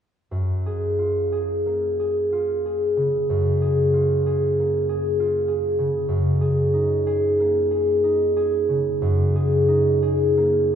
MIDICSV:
0, 0, Header, 1, 2, 480
1, 0, Start_track
1, 0, Key_signature, 6, "major"
1, 0, Tempo, 1013514
1, 150, Time_signature, 3, 2, 24, 8
1, 1107, Tempo, 967742
1, 2067, Tempo, 914634
1, 3027, Tempo, 975610
1, 4467, Tempo, 1023891
1, 5274, End_track
2, 0, Start_track
2, 0, Title_t, "Harp"
2, 0, Program_c, 0, 46
2, 148, Note_on_c, 0, 42, 27
2, 313, Note_on_c, 0, 68, 23
2, 467, Note_on_c, 0, 65, 19
2, 621, Note_off_c, 0, 68, 0
2, 627, Note_on_c, 0, 68, 25
2, 786, Note_on_c, 0, 58, 21
2, 939, Note_off_c, 0, 68, 0
2, 945, Note_on_c, 0, 68, 21
2, 1095, Note_off_c, 0, 65, 0
2, 1101, Note_on_c, 0, 65, 24
2, 1259, Note_off_c, 0, 68, 0
2, 1265, Note_on_c, 0, 68, 24
2, 1419, Note_on_c, 0, 49, 22
2, 1576, Note_off_c, 0, 42, 0
2, 1582, Note_on_c, 0, 42, 30
2, 1736, Note_off_c, 0, 68, 0
2, 1742, Note_on_c, 0, 68, 24
2, 1893, Note_off_c, 0, 65, 0
2, 1899, Note_on_c, 0, 65, 21
2, 2056, Note_off_c, 0, 68, 0
2, 2061, Note_on_c, 0, 68, 25
2, 2228, Note_off_c, 0, 58, 0
2, 2235, Note_on_c, 0, 58, 25
2, 2385, Note_off_c, 0, 68, 0
2, 2391, Note_on_c, 0, 68, 26
2, 2546, Note_off_c, 0, 65, 0
2, 2552, Note_on_c, 0, 65, 25
2, 2693, Note_off_c, 0, 68, 0
2, 2700, Note_on_c, 0, 68, 27
2, 2854, Note_off_c, 0, 49, 0
2, 2860, Note_on_c, 0, 49, 25
2, 3011, Note_off_c, 0, 42, 0
2, 3017, Note_on_c, 0, 42, 30
2, 3042, Note_off_c, 0, 49, 0
2, 3044, Note_off_c, 0, 65, 0
2, 3173, Note_off_c, 0, 68, 0
2, 3179, Note_on_c, 0, 68, 25
2, 3338, Note_on_c, 0, 63, 23
2, 3495, Note_off_c, 0, 68, 0
2, 3501, Note_on_c, 0, 68, 31
2, 3659, Note_off_c, 0, 58, 0
2, 3665, Note_on_c, 0, 58, 25
2, 3812, Note_off_c, 0, 68, 0
2, 3817, Note_on_c, 0, 68, 30
2, 3973, Note_off_c, 0, 63, 0
2, 3979, Note_on_c, 0, 63, 29
2, 4135, Note_off_c, 0, 68, 0
2, 4141, Note_on_c, 0, 68, 31
2, 4299, Note_on_c, 0, 49, 27
2, 4455, Note_off_c, 0, 42, 0
2, 4461, Note_on_c, 0, 42, 38
2, 4615, Note_off_c, 0, 68, 0
2, 4620, Note_on_c, 0, 68, 28
2, 4768, Note_off_c, 0, 63, 0
2, 4773, Note_on_c, 0, 63, 26
2, 4928, Note_off_c, 0, 68, 0
2, 4933, Note_on_c, 0, 68, 30
2, 5091, Note_off_c, 0, 58, 0
2, 5096, Note_on_c, 0, 58, 28
2, 5261, Note_off_c, 0, 68, 0
2, 5274, Note_off_c, 0, 42, 0
2, 5274, Note_off_c, 0, 49, 0
2, 5274, Note_off_c, 0, 58, 0
2, 5274, Note_off_c, 0, 63, 0
2, 5274, End_track
0, 0, End_of_file